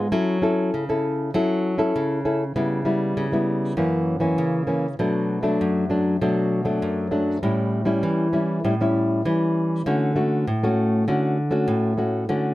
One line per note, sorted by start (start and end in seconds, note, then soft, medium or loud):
0.12 0.70 F#3 medium
0.12 0.38 C#4 medium
0.12 0.38 E4 medium
0.12 0.38 A4 medium
0.42 0.83 C#4 medium
0.42 0.83 E4 soft
0.42 0.84 A4 medium
0.74 1.31 C#3 medium
0.89 1.29 C#4 medium
0.89 1.30 E4 medium
0.89 1.30 A4 medium
1.34 1.92 F#3 medium
1.34 1.75 C#4 soft
1.34 1.75 E4 medium
1.34 1.75 A4 medium
1.78 2.20 C#4 medium
1.78 2.20 E4 medium
1.78 2.20 A4 medium
1.96 2.53 C#3 medium
2.25 2.43 C#4 soft
2.25 2.43 E4 soft
2.25 2.43 A4 medium
2.56 3.14 C#3 medium
2.56 2.81 G3 soft
2.56 2.81 B3 medium
2.56 2.82 E4 medium
2.85 3.26 G3 medium
2.85 3.27 B3 medium
2.85 3.27 E4 medium
3.17 3.75 C#3 medium
3.32 3.73 G3 medium
3.32 3.73 B3 medium
3.32 3.73 E4 medium
3.77 4.35 F#2 medium
3.77 4.18 E3 medium
3.77 4.18 A#3 soft
3.77 4.18 C#4 medium
4.20 4.62 E3 medium
4.20 4.62 A#3 medium
4.20 4.63 C#4 medium
4.38 4.96 C#3 medium
4.67 4.86 E3 medium
4.67 4.86 A#3 soft
4.67 4.86 C#4 medium
4.99 5.57 B2 medium
4.99 5.40 F#3 medium
4.99 5.40 A3 medium
4.99 5.40 D4 medium
5.43 5.84 F#3 medium
5.43 5.85 A3 medium
5.43 5.85 D4 medium
5.61 6.18 F#2 medium
5.90 6.16 F#3 soft
5.90 6.16 A3 soft
5.90 6.16 D4 medium
6.21 6.79 B2 medium
6.21 6.62 F#3 medium
6.21 6.62 A3 medium
6.21 6.63 D4 medium
6.65 7.06 F#3 medium
6.65 7.07 A3 medium
6.65 7.07 D4 medium
6.82 7.40 F#2 medium
7.11 7.37 F#3 medium
7.11 7.37 A3 medium
7.11 7.38 D4 medium
7.43 8.01 A2 medium
7.43 7.83 G3 soft
7.43 7.84 C#4 soft
7.43 7.84 E4 medium
7.85 8.28 G3 medium
7.85 8.28 C#4 medium
7.85 8.28 E4 medium
8.03 8.61 E3 medium
8.33 8.59 G3 medium
8.33 8.59 C#4 medium
8.33 8.59 E4 medium
8.65 9.22 A2 medium
8.65 8.74 G3 medium
8.65 8.74 C#4 soft
8.65 8.74 E4 medium
8.81 9.21 G3 medium
8.81 9.21 C#4 medium
8.81 9.21 E4 medium
9.25 9.83 E3 medium
9.25 9.81 G3 medium
9.25 9.82 C#4 medium
9.25 9.82 E4 medium
9.86 10.44 D3 medium
9.86 10.12 A3 medium
9.86 10.12 C#4 medium
9.86 10.12 F#4 medium
10.16 10.45 A3 medium
10.16 10.45 C#4 medium
10.16 10.45 F#4 medium
10.47 11.05 A2 medium
10.63 11.04 A3 medium
10.63 11.04 C#4 medium
10.63 11.04 F#4 medium
11.08 11.66 D3 medium
11.08 11.37 A3 soft
11.08 11.37 C#4 medium
11.08 11.37 F#4 medium
11.51 11.93 A3 medium
11.51 11.93 C#4 medium
11.51 11.93 F#4 medium
11.68 12.26 A2 medium
11.97 12.24 A3 medium
11.97 12.24 C#4 soft
11.97 12.24 F#4 medium
12.29 12.54 D3 medium
12.29 12.54 A3 medium
12.29 12.54 C#4 medium
12.29 12.54 F#4 medium